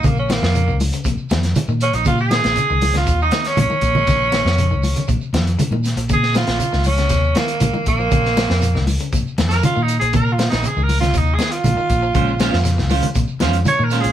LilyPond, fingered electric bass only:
\new Staff \with { instrumentName = "Fingered electric bass" } { \clef bass \time 4/4 \key bes \minor \tempo 4 = 119 bes,,8. f,8 des,8 r16 bes,,16 r16 f,8 r16 bes,8 bes,,16 | bes,8. bes,,16 r16 des,8. ees,8 r8 bes,,16 r16 bes,,8 | bes,,8. f,8 des,8 r16 bes,,16 r16 f,8 r16 bes,8 bes,,16 | bes,8. bes,,16 r16 des,8. ees,8 r8 bes,,16 r16 bes,,8 |
bes,,8. f,8 des,8 r16 bes,,16 r16 f,8 r16 bes,8 bes,,16 | bes,8. bes,,16 r16 des,8. ees,8 r8 bes,,16 r16 bes,,8 | bes,,8. f,8 des,8 r16 bes,,16 r16 f,8 r16 bes,8 bes,,16 | }